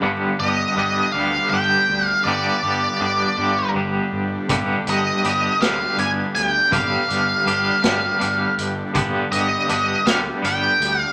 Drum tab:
HH |------|------|xxxxxx|xxxxxx|
SD |------|------|---o--|---o--|
BD |------|------|o-----|o-----|

HH |xxxxxx|
SD |---o--|
BD |o-----|